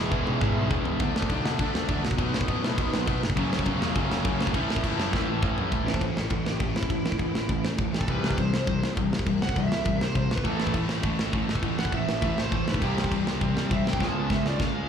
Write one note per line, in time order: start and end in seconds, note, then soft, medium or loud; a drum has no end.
0.00 0.11 E2 medium
0.00 0.11 E2 loud
0.00 0.10 B2 loud
0.00 0.12 E3 loud
0.00 0.11 G#3 loud
0.00 0.10 B3 loud
0.00 0.67 G#4 medium
0.00 0.71 G#5 loud
0.11 0.25 E1 medium
0.11 0.39 E2 medium
0.11 0.40 B2 loud
0.11 0.39 E3 loud
0.11 0.40 G#3 loud
0.11 0.41 B3 loud
0.11 0.41 E4 loud
0.11 kick loud
0.27 0.40 A1 loud
0.27 high tom medium
0.41 0.55 E1 loud
0.41 0.69 E2 medium
0.41 0.70 E2 medium
0.41 0.69 B2 loud
0.41 0.70 B2 loud
0.41 0.70 E3 loud
0.41 0.69 G#3 medium
0.41 0.69 B3 medium
0.41 0.68 E4 loud
0.41 kick loud
0.41 mid tom medium
0.55 0.69 B1 loud
0.70 0.84 E1 loud
0.70 0.99 E2 medium
0.70 1.00 E2 loud
0.70 0.99 B2 medium
0.70 0.99 B2 loud
0.70 0.98 E3 medium
0.70 0.99 G#3 medium
0.70 0.99 B3 loud
0.70 0.99 E4 loud
0.70 kick loud
0.70 floor tom loud
0.85 0.98 E1 medium
0.85 floor tom medium
0.99 1.12 D2 medium
0.99 1.29 D3 loud
0.99 1.29 F#3 medium
0.99 1.28 A3 loud
0.99 1.28 D4 loud
0.99 kick loud
0.99 crash medium
1.15 1.27 D2 loud
1.15 snare loud
1.22 kick medium
1.29 1.42 B1 medium
1.29 1.57 D3 medium
1.29 1.59 F#3 loud
1.29 1.58 A3 loud
1.29 1.59 D4 loud
1.29 kick loud
1.29 crash medium
1.45 1.57 B2 medium
1.45 snare loud
1.58 1.71 D2 loud
1.58 1.89 D3 medium
1.58 1.89 F#3 medium
1.58 1.88 A3 medium
1.58 1.87 D4 loud
1.58 kick loud
1.58 crash medium
1.75 1.86 D2 loud
1.75 snare loud
1.88 2.01 A1 loud
1.88 2.03 D3 medium
1.88 2.19 F#3 loud
1.88 2.03 A3 medium
1.88 2.03 D4 loud
1.88 kick loud
1.88 crash medium
2.04 2.16 B1 medium
2.04 snare loud
2.11 kick medium
2.18 2.30 B1 medium
2.18 2.48 B2 loud
2.18 2.48 F#3 medium
2.18 2.47 B3 loud
2.18 2.47 D#4 loud
2.18 kick loud
2.18 crash medium
2.33 2.45 B1 medium
2.33 snare loud
2.41 kick loud
2.48 2.60 A1 medium
2.48 2.76 B2 medium
2.48 2.77 F#3 medium
2.48 2.77 B3 loud
2.48 2.78 D#4 loud
2.48 kick loud
2.48 crash medium
2.63 2.75 A2 medium
2.63 snare loud
2.77 2.90 B1 loud
2.77 3.07 B2 medium
2.77 3.07 F#3 loud
2.77 3.07 B3 medium
2.77 3.06 D#4 medium
2.77 kick loud
2.77 crash medium
2.92 3.04 B1 medium
2.92 snare loud
3.07 3.19 B2 medium
3.07 3.22 B2 medium
3.07 3.21 F#3 loud
3.07 3.21 B3 loud
3.07 3.21 D#4 loud
3.07 kick loud
3.07 crash medium
3.23 3.34 F#1 medium
3.23 snare loud
3.30 kick medium
3.37 3.49 F#1 loud
3.37 3.67 F#2 loud
3.37 3.66 C#3 loud
3.37 3.66 F#3 loud
3.37 3.66 A3 loud
3.37 3.66 C#4 loud
3.37 kick loud
3.37 crash medium
3.53 3.64 F#1 medium
3.53 snare loud
3.59 kick medium
3.66 3.78 E1 loud
3.66 3.94 F#2 medium
3.66 3.95 C#3 loud
3.66 3.95 F#3 loud
3.66 3.97 A3 loud
3.66 3.97 C#4 loud
3.66 kick loud
3.66 crash medium
3.80 3.93 E2 loud
3.80 4.55 F#2 medium
3.80 4.53 C#3 medium
3.80 4.53 F#3 medium
3.80 snare loud
3.95 4.08 F#1 medium
3.95 4.26 F#2 loud
3.95 4.25 C#3 medium
3.95 4.25 F#3 medium
3.95 4.25 A3 loud
3.95 4.24 C#4 medium
3.95 kick loud
3.95 crash medium
4.11 4.22 F#1 medium
4.11 snare loud
4.25 4.37 F#2 loud
4.25 4.53 F#2 medium
4.25 4.54 C#3 medium
4.25 4.54 F#3 loud
4.25 4.55 A3 loud
4.25 4.55 C#4 loud
4.25 kick loud
4.25 crash medium
4.39 4.51 G#1 medium
4.39 snare loud
4.47 kick medium
4.53 4.66 A1 medium
4.53 4.84 A2 loud
4.53 4.84 E3 loud
4.53 4.83 A3 loud
4.53 4.83 C#4 medium
4.53 4.82 E4 loud
4.53 kick loud
4.53 crash medium
4.70 4.81 A1 medium
4.70 snare loud
4.76 kick medium
4.83 4.96 F#1 medium
4.83 5.11 A2 medium
4.83 5.12 E3 medium
4.83 5.13 A3 loud
4.83 5.13 C#4 loud
4.83 5.13 E4 loud
4.83 kick loud
4.83 crash medium
4.97 5.11 F#2 loud
4.97 5.72 A2 medium
4.97 5.71 E3 medium
4.97 5.71 A3 medium
4.97 snare loud
5.13 5.25 A1 medium
5.13 5.43 A2 medium
5.13 5.43 E3 medium
5.13 5.42 A3 medium
5.13 5.42 C#4 medium
5.13 5.41 E4 medium
5.13 kick loud
5.13 snare medium
5.29 5.40 A1 medium
5.42 5.54 A2 loud
5.42 5.70 A2 medium
5.42 5.71 E3 loud
5.42 5.71 A3 loud
5.42 5.71 C#4 loud
5.42 5.71 E4 loud
5.42 kick loud
5.42 mid tom loud
5.57 5.69 F#2 medium
5.57 floor tom medium
5.71 5.85 A1 medium
5.71 6.00 A2 medium
5.71 6.00 E3 medium
5.71 6.01 A3 loud
5.71 kick loud
5.71 crash medium
5.85 6.00 A1 medium
5.85 6.00 A4 medium
5.85 6.00 C5 medium
5.85 snare loud
5.94 kick medium
6.01 6.29 A1 medium
6.01 6.15 A2 medium
6.01 6.15 E3 medium
6.01 6.15 A4 medium
6.01 6.16 C5 medium
6.01 kick medium
6.01 crash medium
6.16 6.29 C#4 medium
6.16 6.30 A4 medium
6.16 snare loud
6.30 6.58 A1 medium
6.30 6.44 A2 medium
6.30 6.44 E3 medium
6.30 6.45 C#4 medium
6.30 6.45 A4 medium
6.30 kick medium
6.30 crash medium
6.45 6.59 E4 medium
6.45 6.59 G4 medium
6.45 snare loud
6.60 6.74 A1 loud
6.60 6.74 A2 medium
6.60 6.74 E3 medium
6.60 6.74 E4 medium
6.60 6.75 G4 medium
6.60 kick loud
6.60 crash medium
6.75 6.89 A1 medium
6.75 7.62 E4 medium
6.75 snare loud
6.83 kick medium
6.90 7.04 A1 medium
6.90 7.03 A2 medium
6.90 7.03 E3 medium
6.90 kick medium
6.90 crash medium
7.05 7.18 A1 medium
7.05 snare loud
7.12 kick medium
7.19 7.33 A1 medium
7.19 7.33 A2 medium
7.19 7.33 E3 medium
7.19 kick medium
7.19 crash medium
7.34 7.48 A1 medium
7.34 snare loud
7.49 7.77 A1 medium
7.49 7.63 A2 medium
7.49 7.63 E3 medium
7.49 kick loud
7.49 crash medium
7.65 snare loud
7.78 7.92 A1 medium
7.78 7.92 A2 medium
7.78 7.92 E3 medium
7.78 kick loud
7.78 crash medium
7.93 8.07 A1 medium
7.93 8.09 A4 medium
7.93 snare loud
8.01 kick medium
8.08 8.22 C2 medium
8.08 8.37 C3 medium
8.08 8.37 E3 loud
8.08 8.37 G3 loud
8.08 8.37 C4 loud
8.08 8.37 B4 loud
8.08 kick loud
8.08 crash medium
8.23 8.37 C2 medium
8.23 snare loud
8.31 kick medium
8.38 8.65 C2 medium
8.38 8.51 C3 medium
8.38 8.51 E3 loud
8.38 8.51 G3 medium
8.38 8.67 C5 medium
8.38 kick medium
8.38 crash medium
8.54 snare loud
8.67 8.95 C2 medium
8.67 8.81 C3 medium
8.67 8.81 E3 medium
8.67 8.81 G3 medium
8.67 8.82 C5 medium
8.67 kick loud
8.67 crash medium
8.83 snare loud
8.97 9.11 C2 medium
8.97 9.11 C3 medium
8.97 9.11 E3 medium
8.97 9.10 G3 loud
8.97 kick loud
8.97 crash medium
9.12 9.25 C2 medium
9.12 snare loud
9.19 kick medium
9.26 9.40 C2 medium
9.26 9.40 C3 medium
9.26 9.40 E3 medium
9.26 9.40 G3 medium
9.26 kick medium
9.26 crash medium
9.42 9.55 C2 medium
9.42 9.56 F#5 loud
9.42 snare loud
9.49 kick medium
9.56 9.70 C2 medium
9.56 9.69 C3 medium
9.56 9.70 E3 loud
9.56 9.70 G3 medium
9.56 10.00 E5 loud
9.56 kick medium
9.56 crash medium
9.71 9.85 C2 medium
9.71 snare loud
9.85 10.13 C2 medium
9.85 9.99 C3 medium
9.85 9.99 E3 medium
9.85 9.99 G3 medium
9.85 kick loud
9.85 crash medium
10.01 10.16 C5 medium
10.01 snare loud
10.15 10.29 C2 medium
10.15 10.29 C3 medium
10.15 10.29 E3 medium
10.15 10.28 G3 medium
10.15 10.32 C5 medium
10.15 kick loud
10.15 crash medium
10.31 10.44 C2 medium
10.31 10.48 B4 medium
10.31 snare loud
10.37 kick medium
10.45 10.58 A1 medium
10.45 10.73 A2 medium
10.45 10.74 E3 loud
10.45 10.74 A3 medium
10.45 10.75 A4 medium
10.45 kick medium
10.45 crash medium
10.59 10.73 A1 medium
10.59 snare loud
10.67 kick medium
10.74 11.02 A1 medium
10.74 10.88 A2 medium
10.74 10.88 E3 loud
10.74 11.03 A3 loud
10.74 kick medium
10.74 crash medium
10.89 snare loud
11.03 11.31 A1 medium
11.03 11.17 A2 medium
11.03 11.17 E3 medium
11.03 11.32 A3 loud
11.03 kick loud
11.03 crash medium
11.19 snare loud
11.33 11.47 A1 loud
11.33 11.47 A2 medium
11.33 11.47 E3 medium
11.33 11.63 A3 medium
11.33 kick loud
11.33 crash medium
11.48 11.62 A1 medium
11.48 snare medium
11.55 kick medium
11.63 11.77 A1 medium
11.63 11.76 A2 medium
11.63 11.76 E3 medium
11.63 11.92 A3 medium
11.63 kick loud
11.63 crash medium
11.78 11.92 A1 medium
11.78 11.93 F#5 medium
11.78 snare loud
11.85 kick medium
11.92 12.06 A1 loud
11.92 12.06 A2 medium
11.92 12.06 E3 medium
11.92 12.21 A3 loud
11.92 12.36 E5 medium
11.92 kick medium
11.92 crash medium
12.08 12.21 A1 medium
12.08 snare loud
12.22 12.50 A1 loud
12.22 12.35 A2 medium
12.22 12.36 E3 medium
12.22 12.50 A3 loud
12.22 kick loud
12.22 crash medium
12.38 12.51 C5 medium
12.38 snare loud
12.52 12.66 A1 medium
12.52 12.65 A2 medium
12.52 12.66 E3 medium
12.52 12.80 A3 medium
12.52 12.67 C5 loud
12.52 kick loud
12.52 crash medium
12.67 12.80 B1 medium
12.67 12.82 B4 medium
12.67 snare loud
12.74 kick medium
12.81 12.95 C2 medium
12.81 13.10 C3 medium
12.81 13.10 E3 medium
12.81 13.11 G3 loud
12.81 13.11 C4 loud
12.81 13.10 C4 loud
12.81 13.11 G4 loud
12.81 kick loud
12.81 crash medium
12.97 13.10 C2 medium
12.97 snare loud
13.04 kick medium
13.11 13.39 C2 medium
13.11 13.25 C3 medium
13.11 13.25 E3 loud
13.11 13.25 G3 loud
13.11 13.41 G3 medium
13.11 13.42 C4 medium
13.11 kick medium
13.11 crash medium
13.27 snare loud
13.41 13.69 C2 loud
13.41 13.54 C3 medium
13.41 13.54 E3 medium
13.41 13.54 G3 medium
13.41 13.71 G3 loud
13.41 13.71 C4 loud
13.41 kick loud
13.41 crash medium
13.57 snare loud
13.70 13.85 C2 loud
13.70 13.84 C3 medium
13.70 13.84 E3 medium
13.70 13.84 G3 loud
13.70 14.00 G3 medium
13.70 14.00 C4 medium
13.70 13.85 E5 medium
13.70 kick loud
13.70 crash medium
13.85 13.99 C2 medium
13.85 14.00 G5 medium
13.85 snare loud
13.93 kick medium
14.00 14.14 C#2 medium
14.00 14.29 C#3 medium
14.00 14.29 G#3 medium
14.00 14.30 B3 loud
14.00 14.29 C#4 medium
14.00 14.28 C#4 loud
14.00 14.29 A5 loud
14.00 kick medium
14.00 snare medium
14.16 14.29 C#2 medium
14.30 14.44 C#2 medium
14.30 14.43 C#3 medium
14.30 14.44 G#3 medium
14.30 14.58 C#4 medium
14.30 14.44 E5 medium
14.30 kick loud
14.30 snare medium
14.45 14.59 C#2 loud
14.45 14.61 D5 medium
14.45 snare medium
14.59 14.87 C#2 medium
14.59 14.73 C#3 medium
14.59 14.73 G#3 medium
14.59 14.87 C#4 loud
14.59 14.89 F5 medium
14.59 kick loud
14.59 snare medium